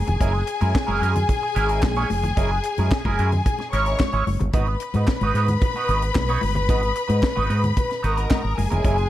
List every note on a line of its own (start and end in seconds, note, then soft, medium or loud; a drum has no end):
0.00 3.68 G#4 medium
0.00 3.68 G#5 loud
0.07 0.18 F1 medium
0.07 muted clean electric guitar stroke soft
0.07 closed hi-hat soft
0.07 low conga medium
0.20 0.42 F#1 medium
0.20 0.42 G#3 medium
0.20 0.33 C#4 medium
0.20 0.33 E4 medium
0.20 0.33 A#4 medium
0.20 kick medium
0.20 closed hi-hat medium
0.20 muted conga soft
0.34 muted clean electric guitar stroke medium
0.34 muted conga soft
0.47 muted clean electric guitar stroke soft
0.47 closed hi-hat medium
0.61 0.72 F#2 loud
0.61 0.73 G#3 medium
0.61 0.74 C#4 medium
0.61 0.74 E4 medium
0.61 0.74 A#4 medium
0.61 closed hi-hat soft
0.61 high conga medium
0.75 muted clean electric guitar stroke soft
0.75 kick loud
0.75 snare loud
0.75 clap medium
0.75 muted conga soft
0.87 0.99 F#1 medium
0.87 1.00 G#3 medium
0.87 1.00 C#4 medium
0.87 1.01 E4 medium
0.87 1.01 A#4 medium
0.87 high conga medium
1.01 1.23 F#2 loud
1.01 1.18 G#3 medium
1.01 1.14 C#4 medium
1.01 1.14 E4 medium
1.01 1.14 A#4 medium
1.01 closed hi-hat soft
1.15 muted clean electric guitar stroke soft
1.15 closed hi-hat medium
1.15 low conga medium
1.29 muted clean electric guitar stroke soft
1.29 kick loud
1.29 closed hi-hat medium
1.43 muted clean electric guitar stroke soft
1.55 1.83 G#1 loud
1.55 1.68 G#3 medium
1.55 1.68 C#4 medium
1.55 1.68 E4 medium
1.55 1.68 A#4 medium
1.55 closed hi-hat medium
1.69 1.81 G#3 soft
1.69 1.82 C#4 medium
1.69 1.82 E4 medium
1.69 1.82 A#4 medium
1.69 closed hi-hat soft
1.83 2.04 A#1 loud
1.83 kick loud
1.83 snare loud
1.83 clap loud
1.83 high conga medium
1.96 2.09 G#3 medium
1.96 2.09 C#4 medium
1.96 2.09 E4 medium
1.96 2.10 C#5 medium
1.96 closed hi-hat soft
2.10 2.31 F1 medium
2.10 open hi-hat medium
2.10 high conga medium
2.23 muted clean electric guitar stroke soft
2.23 closed hi-hat soft
2.23 low conga medium
2.37 2.58 F#1 loud
2.37 2.58 G#3 medium
2.37 2.51 C#4 medium
2.37 2.51 E4 medium
2.37 2.51 A#4 medium
2.37 kick medium
2.37 closed hi-hat medium
2.37 muted conga soft
2.52 muted clean electric guitar stroke soft
2.63 muted clean electric guitar stroke soft
2.63 closed hi-hat medium
2.78 2.89 F#2 loud
2.78 2.91 G#3 soft
2.78 2.91 C#4 medium
2.78 2.91 E4 medium
2.78 2.92 A#4 medium
2.78 closed hi-hat soft
2.78 high conga medium
2.91 kick loud
2.91 snare loud
2.91 clap medium
3.05 3.16 F#1 medium
3.05 3.18 G#3 medium
3.05 3.18 C#4 medium
3.05 3.19 E4 medium
3.05 3.19 A#4 medium
3.05 kick medium
3.05 high conga medium
3.19 3.40 F#2 loud
3.19 3.35 G#3 medium
3.19 3.31 C#4 medium
3.19 3.31 E4 medium
3.19 3.31 A#4 medium
3.19 closed hi-hat medium
3.32 muted clean electric guitar stroke soft
3.32 closed hi-hat soft
3.32 low conga medium
3.46 muted clean electric guitar stroke soft
3.46 kick loud
3.46 closed hi-hat medium
3.59 muted clean electric guitar stroke soft
3.59 snare soft
3.59 muted conga soft
3.73 3.94 G#1 medium
3.73 3.85 G#3 medium
3.73 3.86 C#4 medium
3.73 3.85 E4 medium
3.73 3.85 A#4 medium
3.73 4.25 C#5 medium
3.73 4.25 C#6 medium
3.73 closed hi-hat medium
3.86 3.98 G#3 soft
3.86 3.98 C#4 medium
3.86 3.99 E4 medium
3.86 3.99 A#4 medium
3.86 closed hi-hat soft
4.00 kick loud
4.00 snare loud
4.00 clap loud
4.00 high conga medium
4.12 4.23 G#1 medium
4.12 4.24 G#3 medium
4.12 4.25 C#4 medium
4.12 4.25 E4 medium
4.12 4.26 C#5 medium
4.12 closed hi-hat soft
4.25 4.37 F#1 medium
4.25 muted clean electric guitar stroke soft
4.25 open hi-hat medium
4.25 high conga medium
4.40 4.51 G1 medium
4.40 muted clean electric guitar stroke soft
4.40 closed hi-hat soft
4.40 low conga medium
4.53 4.75 G#1 medium
4.53 4.75 B3 medium
4.53 4.68 D#4 medium
4.53 4.67 F#4 medium
4.53 8.01 B4 medium
4.53 4.67 B4 medium
4.53 8.01 B5 loud
4.53 kick loud
4.53 closed hi-hat medium
4.67 muted clean electric guitar stroke soft
4.67 muted conga soft
4.80 muted clean electric guitar stroke soft
4.80 closed hi-hat medium
4.94 5.05 G#2 medium
4.94 5.08 B3 soft
4.94 5.09 D#4 medium
4.94 5.09 F#4 medium
4.94 5.09 B4 medium
4.94 closed hi-hat soft
4.94 high conga medium
5.08 muted clean electric guitar stroke soft
5.08 kick loud
5.08 snare loud
5.08 clap medium
5.21 5.31 G#1 medium
5.21 5.35 B3 medium
5.21 5.36 D#4 medium
5.21 5.36 F#4 medium
5.21 5.37 B4 medium
5.21 closed hi-hat soft
5.21 high conga medium
5.34 5.55 G#2 loud
5.34 5.52 B3 medium
5.34 5.49 D#4 medium
5.34 5.48 F#4 medium
5.34 5.48 B4 medium
5.34 closed hi-hat medium
5.48 muted clean electric guitar stroke soft
5.48 closed hi-hat soft
5.48 low conga medium
5.61 muted clean electric guitar stroke soft
5.61 kick loud
5.61 closed hi-hat medium
5.61 muted conga soft
5.74 5.89 B3 medium
5.74 5.89 D#4 medium
5.74 5.90 F#4 medium
5.74 5.90 B4 medium
5.74 muted conga soft
5.89 6.09 G#1 medium
5.89 6.06 B3 medium
5.89 6.03 D#4 medium
5.89 6.03 F#4 medium
5.89 6.02 B4 medium
5.89 closed hi-hat medium
6.02 muted clean electric guitar stroke soft
6.02 closed hi-hat medium
6.15 6.36 B1 loud
6.15 muted clean electric guitar stroke soft
6.15 kick loud
6.15 snare loud
6.15 clap loud
6.15 muted conga soft
6.15 high conga medium
6.28 6.41 B3 medium
6.28 6.41 D#4 medium
6.28 6.42 F#4 medium
6.28 6.43 C#5 medium
6.28 closed hi-hat soft
6.28 muted conga soft
6.41 6.69 G1 medium
6.41 open hi-hat medium
6.41 high conga medium
6.55 muted clean electric guitar stroke soft
6.55 closed hi-hat soft
6.55 low conga medium
6.69 6.90 G#1 medium
6.69 6.91 B3 medium
6.69 6.82 D#4 medium
6.69 6.81 F#4 medium
6.69 6.81 B4 loud
6.69 kick loud
6.69 closed hi-hat medium
6.69 muted conga soft
6.82 muted clean electric guitar stroke medium
6.82 closed hi-hat soft
6.82 muted conga soft
6.96 muted clean electric guitar stroke soft
6.96 closed hi-hat medium
7.08 7.20 G#2 loud
7.08 7.21 B3 medium
7.08 7.21 D#4 medium
7.08 7.21 F#4 medium
7.08 7.22 B4 medium
7.08 closed hi-hat soft
7.08 high conga medium
7.22 muted clean electric guitar stroke medium
7.22 kick loud
7.22 snare loud
7.22 clap medium
7.36 7.47 G#1 medium
7.36 7.48 B3 medium
7.36 7.48 D#4 medium
7.36 7.49 F#4 medium
7.36 7.49 B4 medium
7.36 muted conga soft
7.36 high conga medium
7.49 7.71 G#2 loud
7.49 7.67 B3 medium
7.49 7.63 D#4 medium
7.49 7.63 F#4 medium
7.49 7.62 B4 medium
7.49 closed hi-hat medium
7.63 muted clean electric guitar stroke soft
7.63 closed hi-hat soft
7.63 low conga medium
7.77 muted clean electric guitar stroke soft
7.77 kick loud
7.77 closed hi-hat medium
7.77 muted conga soft
7.90 muted clean electric guitar stroke soft
7.90 snare soft
7.90 closed hi-hat soft
8.03 8.25 G#1 medium
8.03 8.16 B3 medium
8.03 8.17 D#4 medium
8.03 8.16 F#4 medium
8.03 8.57 A#4 medium
8.03 8.16 B4 medium
8.03 8.57 A#5 medium
8.03 closed hi-hat medium
8.17 8.29 B3 medium
8.17 8.30 D#4 medium
8.17 8.30 F#4 medium
8.17 8.30 B4 medium
8.17 closed hi-hat soft
8.30 8.52 B3 medium
8.30 8.43 D#4 medium
8.30 8.43 F#4 medium
8.30 8.42 B4 medium
8.30 kick loud
8.30 snare loud
8.30 clap loud
8.30 muted conga soft
8.30 high conga medium
8.43 8.55 G#1 medium
8.43 muted clean electric guitar stroke soft
8.43 muted conga soft
8.57 8.69 F#1 medium
8.57 9.09 G#4 medium
8.57 9.09 G#5 loud
8.57 muted clean electric guitar stroke soft
8.57 open hi-hat medium
8.57 high conga medium
8.70 8.82 F1 medium
8.70 8.83 G#3 medium
8.70 8.84 C#4 medium
8.70 8.84 E4 medium
8.70 8.84 A#4 medium
8.70 closed hi-hat soft
8.70 low conga medium
8.84 9.06 F#1 medium
8.84 9.06 G#3 medium
8.84 8.98 C#4 medium
8.84 8.97 E4 medium
8.84 8.97 A#4 medium
8.84 kick loud
8.84 closed hi-hat medium
8.98 muted clean electric guitar stroke soft
8.98 closed hi-hat soft